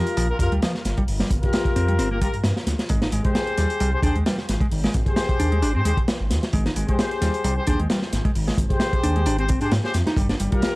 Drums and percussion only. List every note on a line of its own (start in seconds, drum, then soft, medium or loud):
0.07 closed hi-hat soft
0.17 closed hi-hat medium
0.17 closed hi-hat soft
0.39 kick medium
0.39 closed hi-hat medium
0.52 closed hi-hat soft
0.62 snare loud
0.62 closed hi-hat medium
0.62 closed hi-hat soft
0.75 snare soft
0.85 snare soft
0.85 closed hi-hat medium
0.98 kick medium
0.98 closed hi-hat soft
1.08 closed hi-hat soft
1.08 open hi-hat medium
1.20 snare soft
1.20 closed hi-hat soft
1.30 kick medium
1.30 closed hi-hat medium
1.43 kick medium
1.43 closed hi-hat soft
1.53 snare loud
1.53 closed hi-hat medium
1.53 closed hi-hat soft
1.65 kick loud
1.65 closed hi-hat soft
1.76 closed hi-hat medium
1.88 closed hi-hat soft
1.99 closed hi-hat soft
1.99 closed hi-hat medium
2.21 kick medium
2.21 closed hi-hat medium
2.34 closed hi-hat soft
2.44 snare medium
2.44 closed hi-hat medium
2.44 closed hi-hat soft
2.56 snare soft
2.67 snare soft
2.67 closed hi-hat medium
2.79 snare soft
2.79 closed hi-hat soft
2.89 kick loud
2.89 closed hi-hat medium
2.89 closed hi-hat soft
3.02 snare medium
3.02 closed hi-hat soft
3.12 closed hi-hat medium
3.25 kick medium
3.25 closed hi-hat soft
3.35 snare loud
3.35 closed hi-hat soft
3.35 closed hi-hat medium
3.47 closed hi-hat soft
3.58 snare soft
3.58 closed hi-hat medium
3.70 closed hi-hat soft
3.80 closed hi-hat medium
3.80 closed hi-hat soft
4.03 kick medium
4.03 closed hi-hat medium
4.16 closed hi-hat soft
4.26 snare loud
4.26 closed hi-hat soft
4.26 closed hi-hat medium
4.38 snare soft
4.49 snare soft
4.49 closed hi-hat medium
4.60 kick medium
4.60 closed hi-hat soft
4.71 closed hi-hat soft
4.71 open hi-hat medium
4.84 snare medium
4.84 closed hi-hat soft
4.94 kick medium
4.94 closed hi-hat medium
5.06 kick medium
5.06 closed hi-hat soft
5.16 snare loud
5.16 closed hi-hat medium
5.16 closed hi-hat soft
5.29 kick medium
5.29 closed hi-hat soft
5.40 closed hi-hat medium
5.52 closed hi-hat soft
5.62 closed hi-hat soft
5.62 closed hi-hat medium
5.85 closed hi-hat medium
5.97 kick medium
5.97 closed hi-hat soft
6.08 snare loud
6.08 closed hi-hat soft
6.08 closed hi-hat medium
6.30 snare soft
6.30 closed hi-hat medium
6.43 snare soft
6.43 closed hi-hat soft
6.53 kick loud
6.53 closed hi-hat medium
6.53 closed hi-hat soft
6.66 snare soft
6.66 closed hi-hat soft
6.76 closed hi-hat medium
6.89 kick medium
6.89 closed hi-hat soft
6.99 snare loud
6.99 closed hi-hat medium
6.99 closed hi-hat soft
7.11 closed hi-hat soft
7.21 snare soft
7.21 closed hi-hat medium
7.34 closed hi-hat soft
7.44 closed hi-hat medium
7.44 closed hi-hat soft
7.67 kick medium
7.67 closed hi-hat medium
7.80 closed hi-hat soft
7.90 snare loud
7.90 closed hi-hat medium
7.90 closed hi-hat soft
8.02 snare soft
8.13 snare soft
8.13 closed hi-hat medium
8.25 kick medium
8.25 closed hi-hat soft
8.35 closed hi-hat soft
8.35 open hi-hat medium
8.48 snare soft
8.48 closed hi-hat soft
8.58 kick loud
8.58 closed hi-hat medium
8.70 kick medium
8.70 closed hi-hat soft
8.80 snare loud
8.80 closed hi-hat medium
8.80 closed hi-hat soft
8.93 kick medium
8.93 closed hi-hat soft
9.04 closed hi-hat medium
9.16 closed hi-hat soft
9.26 closed hi-hat medium
9.26 closed hi-hat soft
9.39 closed hi-hat soft
9.48 kick medium
9.48 closed hi-hat medium
9.61 closed hi-hat soft
9.71 snare loud
9.71 closed hi-hat medium
9.71 closed hi-hat soft
9.84 snare soft
9.94 snare soft
9.94 closed hi-hat medium
10.06 snare soft
10.06 closed hi-hat soft
10.17 kick loud
10.17 closed hi-hat soft
10.17 closed hi-hat medium
10.29 snare soft
10.29 closed hi-hat soft
10.40 closed hi-hat medium
10.52 kick medium
10.52 closed hi-hat soft
10.62 snare loud
10.62 closed hi-hat medium
10.62 closed hi-hat soft